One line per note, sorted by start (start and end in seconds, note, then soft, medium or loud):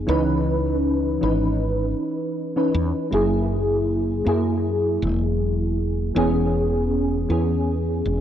0.00 0.10 F#3 medium
0.00 0.09 D#4 medium
0.07 1.17 C#2 loud
0.07 1.17 E3 loud
0.07 1.18 C#4 medium
0.07 1.18 D#4 medium
0.07 1.19 B4 loud
1.21 1.94 G#1 medium
1.21 2.31 E3 medium
1.21 2.32 C#4 medium
1.21 2.32 D#4 medium
1.21 2.33 B4 medium
2.56 3.08 E3 medium
2.56 3.08 C#4 medium
2.56 3.08 D#4 medium
2.56 3.08 B4 medium
2.74 2.91 E2 medium
3.11 4.21 F#1 medium
3.11 4.21 F#3 medium
3.11 4.22 A#3 medium
3.11 4.22 E4 medium
3.11 4.23 G#4 medium
4.25 4.97 F#2 medium
4.25 6.11 F#3 medium
4.25 6.12 A#3 medium
4.25 6.12 E4 medium
4.25 6.13 G#4 medium
5.02 6.11 E1 medium
6.15 7.25 E1 loud
6.15 7.25 E3 medium
6.15 7.26 B3 medium
6.15 7.26 C#4 medium
6.15 7.27 G#4 loud
7.29 8.01 E2 medium
7.29 8.21 E3 medium
7.29 8.21 B3 medium
7.29 8.21 C#4 medium
7.29 8.21 G#4 medium
8.06 8.21 E1 medium